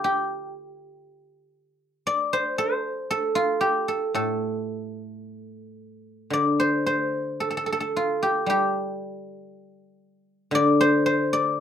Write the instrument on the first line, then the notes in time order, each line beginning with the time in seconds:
guzheng
Already playing: D3 F4 A4 C5
0.04 G4
2.07 D5
2.33 C5
2.58 C5
3.11 A4
3.35 F4
3.61 G4
3.88 A4
4.15 A2 A4
6.30 D3 D5
6.60 C5
6.86 C5
7.40 A4
7.50 A4
7.57 A4
7.66 A4
7.72 A4
7.80 A4
7.96 F4
8.23 G4
8.46 G3 G4
10.51 D3 D5
10.81 C5
11.06 C5
11.33 D5